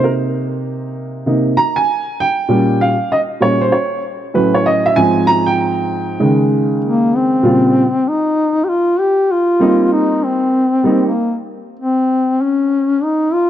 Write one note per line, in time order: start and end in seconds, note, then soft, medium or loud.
0.00 1.25 C3 medium
0.00 1.25 A#3 soft
0.00 1.26 D#4 medium
0.00 0.11 A#4 medium
1.26 1.54 C3 soft
1.26 1.54 A#3 soft
1.26 1.54 D#4 medium
1.57 1.77 A#5 medium
1.76 2.20 G#5 loud
2.20 2.83 G5 loud
2.49 2.93 A#2 medium
2.49 2.94 G3 medium
2.49 2.94 C#4 medium
2.81 3.10 F5 medium
3.12 3.19 D#5 medium
3.40 3.69 A#2 medium
3.40 3.69 G3 soft
3.40 3.69 C#4 medium
3.40 3.62 C#5 medium
3.61 3.73 C5 medium
3.72 4.01 C#5 medium
4.34 4.93 A2 medium
4.34 4.94 F#3 medium
4.34 4.94 C#4 medium
4.34 4.53 B4 medium
4.54 4.66 C#5 medium
4.66 4.86 D#5 medium
4.86 4.96 E5 loud
4.96 6.16 G#2 medium
4.96 6.17 F3 medium
4.96 6.17 C4 medium
4.96 5.28 G#5 loud
5.27 5.48 A#5 loud
5.46 6.36 G5 loud
6.20 7.40 C#3 medium
6.20 7.40 D#3 medium
6.20 7.40 G#3 medium
6.85 7.17 A#3 medium
7.16 8.10 C4 loud
7.43 7.82 A#2 medium
7.43 7.83 C#3 medium
7.43 7.83 G3 medium
7.43 7.83 C4 medium
7.43 7.83 F4 medium
8.09 8.66 D#4 loud
8.64 8.71 G4 medium
8.69 9.01 F4 loud
9.00 9.33 G4 loud
9.31 9.92 F4 loud
9.60 10.61 G3 medium
9.60 10.61 A#3 medium
9.60 10.61 C4 medium
9.60 10.62 D#4 medium
9.93 10.26 D#4 medium
10.24 11.05 C4 medium
10.84 11.08 G3 medium
10.84 11.09 A#3 medium
10.84 11.09 C4 medium
10.84 11.09 D#4 medium
11.06 11.37 A#3 medium
11.79 12.43 C4 medium
12.42 13.05 C#4 medium
13.03 13.35 D#4 loud
13.33 13.50 F4 loud